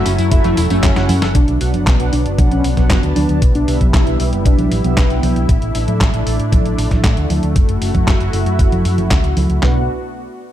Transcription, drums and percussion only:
0.06 open hi-hat, tambourine
0.19 closed hi-hat, tambourine
0.31 kick, closed hi-hat, tambourine
0.44 closed hi-hat, high conga
0.57 open hi-hat, tambourine
0.70 closed hi-hat, tambourine, high conga
0.83 kick, snare, clap, closed hi-hat, tambourine
0.96 snare, closed hi-hat
1.09 open hi-hat, tambourine, high conga
1.22 snare, closed hi-hat, tambourine
1.35 kick, closed hi-hat
1.48 closed hi-hat
1.61 open hi-hat
1.74 closed hi-hat, high conga
1.87 kick, snare, clap, closed hi-hat
2.00 closed hi-hat
2.13 open hi-hat
2.26 closed hi-hat
2.38 kick, closed hi-hat, high conga
2.52 closed hi-hat
2.64 open hi-hat
2.77 kick, snare, closed hi-hat, high conga
2.90 kick, snare, clap, closed hi-hat
3.03 closed hi-hat
3.16 open hi-hat, high conga
3.29 closed hi-hat
3.42 kick, closed hi-hat
3.55 closed hi-hat
3.68 open hi-hat
3.81 kick, closed hi-hat, high conga
3.94 kick, snare, clap, closed hi-hat
4.07 closed hi-hat
4.20 open hi-hat
4.33 closed hi-hat
4.45 kick, closed hi-hat
4.59 closed hi-hat, high conga
4.72 open hi-hat
4.84 closed hi-hat, high conga
4.97 kick, snare, clap, closed hi-hat
5.10 closed hi-hat
5.23 open hi-hat, high conga
5.36 closed hi-hat
5.49 kick, closed hi-hat
5.62 closed hi-hat
5.75 open hi-hat
5.88 closed hi-hat, high conga
6.01 kick, snare, clap, closed hi-hat
6.14 closed hi-hat
6.27 open hi-hat
6.40 closed hi-hat
6.52 kick, closed hi-hat, high conga
6.66 closed hi-hat
6.78 open hi-hat
6.91 kick, snare, closed hi-hat, high conga
7.04 kick, snare, clap, closed hi-hat
7.17 closed hi-hat
7.30 open hi-hat, high conga
7.43 closed hi-hat
7.56 kick, closed hi-hat
7.69 closed hi-hat
7.82 open hi-hat
7.95 kick, closed hi-hat, high conga
8.07 kick, snare, clap, closed hi-hat
8.21 closed hi-hat
8.33 open hi-hat
8.46 closed hi-hat
8.59 kick, closed hi-hat
8.72 closed hi-hat, high conga
8.85 open hi-hat
8.98 closed hi-hat, high conga
9.11 kick, snare, clap, closed hi-hat
9.24 closed hi-hat
9.37 open hi-hat, high conga
9.50 closed hi-hat
9.63 snare, clap, floor tom

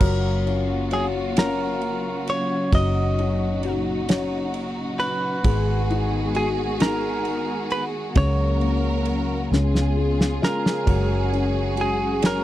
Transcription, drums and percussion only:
0.00 kick, crash
0.47 ride
0.91 ride
1.37 snare, ride
1.82 ride
2.27 ride
2.73 kick, ride
3.19 ride
3.63 ride
4.09 snare, ride
4.54 ride
5.00 ride
5.44 kick, ride
5.90 ride
6.35 ride
6.80 snare, ride
7.25 ride
7.70 ride
8.15 kick, ride
8.61 ride
9.05 ride
9.53 snare
9.75 snare
10.21 snare
10.43 snare
10.66 snare
10.87 kick, ride
11.33 ride
11.77 ride
12.22 snare, ride

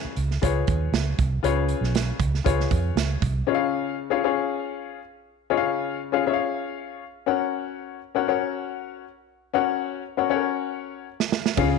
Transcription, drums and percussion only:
0.16 closed hi-hat
0.31 snare
0.43 kick, closed hi-hat
0.67 kick, closed hi-hat
0.94 snare, closed hi-hat
1.19 kick, closed hi-hat
1.44 closed hi-hat
1.69 closed hi-hat
1.84 snare
1.95 snare, closed hi-hat
2.20 kick, closed hi-hat
2.35 snare
2.46 kick, closed hi-hat
2.60 snare
2.71 kick, closed hi-hat
2.97 snare, closed hi-hat
3.22 kick, closed hi-hat
11.20 snare
11.32 snare
11.46 snare
11.57 kick, ride

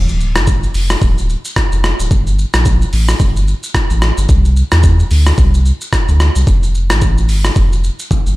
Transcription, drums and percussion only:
0.09 shaker
0.20 shaker
0.36 cross-stick, shaker
0.47 kick, shaker
0.63 shaker
0.74 open hi-hat, shaker
0.90 cross-stick, shaker
1.01 kick, shaker
1.18 shaker
1.29 shaker
1.45 shaker
1.56 kick, cross-stick, shaker
1.72 shaker
1.84 cross-stick, shaker
2.00 shaker
2.11 kick, shaker
2.27 shaker
2.39 shaker
2.54 cross-stick, shaker
2.65 kick, shaker
2.82 shaker
2.93 open hi-hat, shaker
3.08 cross-stick, shaker
3.20 kick, shaker
3.36 shaker
3.48 shaker
3.63 shaker
3.75 kick, cross-stick, shaker
3.90 shaker
4.02 cross-stick, shaker
4.18 shaker
4.29 kick, shaker
4.45 shaker
4.56 shaker
4.72 cross-stick, shaker
4.83 kick, shaker
4.99 shaker
5.11 open hi-hat, shaker
5.26 cross-stick, shaker
5.38 kick, shaker
5.54 shaker
5.66 shaker
5.81 shaker
5.93 kick, cross-stick, shaker
6.08 shaker
6.20 cross-stick, shaker
6.36 shaker
6.47 kick, shaker
6.63 shaker
6.75 shaker
6.90 cross-stick, shaker
7.01 kick, shaker
7.18 shaker
7.29 open hi-hat, shaker
7.45 cross-stick, shaker
7.56 kick, shaker
7.73 shaker
7.84 shaker
8.00 shaker
8.11 kick, high tom, shaker
8.27 shaker

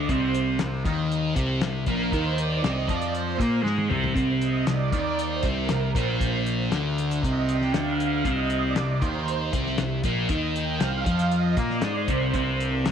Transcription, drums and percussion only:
0.09 kick, closed hi-hat
0.34 closed hi-hat
0.59 snare, closed hi-hat
0.85 kick, closed hi-hat
1.12 closed hi-hat
1.36 kick, closed hi-hat
1.61 snare, closed hi-hat
1.86 kick, closed hi-hat
2.12 kick, closed hi-hat
2.38 closed hi-hat
2.64 snare, closed hi-hat
2.88 kick, closed hi-hat
3.02 closed hi-hat
3.15 closed hi-hat
3.40 kick, closed hi-hat
3.66 snare
3.78 high tom
3.91 mid tom
4.04 floor tom
4.16 kick, closed hi-hat
4.42 closed hi-hat
4.67 snare, closed hi-hat
4.92 kick, closed hi-hat
5.19 closed hi-hat
5.43 kick, closed hi-hat
5.69 snare, closed hi-hat
5.95 kick, closed hi-hat
6.21 kick, closed hi-hat
6.46 closed hi-hat
6.72 snare, closed hi-hat
6.98 closed hi-hat
7.11 closed hi-hat
7.23 kick, closed hi-hat
7.49 closed hi-hat
7.61 snare
7.74 snare, closed hi-hat
8.00 closed hi-hat
8.25 kick, closed hi-hat
8.50 closed hi-hat
8.76 snare, closed hi-hat
9.02 kick, closed hi-hat
9.28 closed hi-hat
9.53 kick, closed hi-hat
9.66 snare
9.78 snare, closed hi-hat
10.03 kick, closed hi-hat
10.29 kick, closed hi-hat
10.56 closed hi-hat
10.80 snare, closed hi-hat
11.06 kick, closed hi-hat
11.19 closed hi-hat
11.31 closed hi-hat
11.57 kick, closed hi-hat
11.70 snare
11.82 snare, closed hi-hat
12.08 kick, closed hi-hat
12.34 kick, closed hi-hat
12.60 closed hi-hat
12.86 snare, closed hi-hat

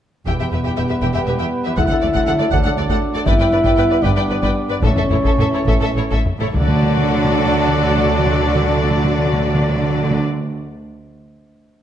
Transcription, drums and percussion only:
0.27 taiko
1.78 taiko
2.15 taiko
2.52 taiko
2.89 taiko
3.26 taiko
3.64 taiko
4.04 taiko
4.42 taiko
4.83 taiko
4.97 taiko low-mid
5.10 taiko low-mid
5.25 taiko
5.39 taiko low-mid
5.67 taiko
6.11 taiko
6.26 taiko low-mid
6.41 taiko low-mid
6.55 taiko low

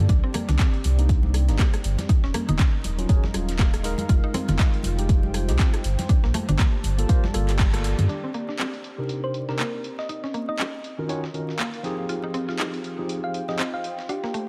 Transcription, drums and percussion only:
0.09 kick, closed hi-hat
0.34 cross-stick, closed hi-hat, open hi-hat, high conga
0.49 snare, closed hi-hat, low conga
0.59 kick, snare, clap, closed hi-hat
0.74 closed hi-hat
0.84 closed hi-hat, open hi-hat, high conga
0.99 closed hi-hat
1.09 kick, closed hi-hat
1.23 high conga
1.34 cross-stick, closed hi-hat, open hi-hat
1.49 snare, closed hi-hat
1.59 kick, snare, clap, closed hi-hat, high conga
1.74 cross-stick, closed hi-hat
1.84 closed hi-hat, open hi-hat
1.98 snare, closed hi-hat, high conga
2.09 kick, closed hi-hat
2.24 snare
2.34 cross-stick, closed hi-hat, open hi-hat, high conga
2.48 closed hi-hat, low conga
2.59 kick, snare, clap, closed hi-hat
2.84 closed hi-hat, open hi-hat, high conga
2.99 closed hi-hat
3.09 kick, closed hi-hat
3.24 snare, high conga
3.34 cross-stick, closed hi-hat, open hi-hat
3.49 snare, closed hi-hat
3.58 kick, snare, clap, closed hi-hat, high conga
3.74 cross-stick, closed hi-hat
3.84 snare, closed hi-hat, open hi-hat
3.98 closed hi-hat, high conga
4.09 kick, closed hi-hat
4.34 cross-stick, closed hi-hat, open hi-hat, high conga
4.48 snare, closed hi-hat, low conga
4.59 kick, snare, clap, closed hi-hat
4.74 closed hi-hat
4.83 closed hi-hat, open hi-hat, high conga
4.99 closed hi-hat
5.09 kick, closed hi-hat
5.23 high conga
5.34 cross-stick, closed hi-hat, open hi-hat
5.49 snare, closed hi-hat
5.59 kick, snare, clap, closed hi-hat, high conga
5.74 cross-stick, closed hi-hat
5.84 closed hi-hat, open hi-hat
5.99 snare, closed hi-hat, high conga
6.09 kick, closed hi-hat
6.24 snare
6.34 cross-stick, closed hi-hat, open hi-hat, high conga
6.49 closed hi-hat, low conga
6.59 kick, snare, clap, closed hi-hat
6.84 closed hi-hat, open hi-hat, high conga
6.99 closed hi-hat
7.09 kick, closed hi-hat
7.24 snare, high conga
7.34 cross-stick, closed hi-hat, open hi-hat
7.49 snare, clap, closed hi-hat
7.59 kick, snare, clap, closed hi-hat, high conga
7.74 cross-stick, closed hi-hat
7.84 snare, closed hi-hat, open hi-hat
7.98 closed hi-hat, high conga, low conga
8.09 closed hi-hat
8.34 closed hi-hat
8.49 snare
8.59 clap, closed hi-hat
8.74 closed hi-hat
8.84 closed hi-hat
9.09 closed hi-hat
9.34 closed hi-hat
9.49 snare
9.59 clap, closed hi-hat
9.84 closed hi-hat
9.99 snare
10.09 closed hi-hat
10.24 snare
10.34 closed hi-hat
10.59 clap, closed hi-hat
10.84 closed hi-hat
11.09 closed hi-hat
11.24 snare
11.34 closed hi-hat
11.49 snare
11.59 clap, closed hi-hat
11.74 closed hi-hat
11.84 snare, closed hi-hat
12.09 closed hi-hat
12.34 closed hi-hat
12.49 snare
12.59 clap, closed hi-hat
12.74 closed hi-hat
12.84 closed hi-hat
13.09 closed hi-hat
13.34 closed hi-hat
13.49 snare
13.59 clap, closed hi-hat
13.84 closed hi-hat
13.99 snare
14.09 closed hi-hat
14.24 snare
14.34 closed hi-hat

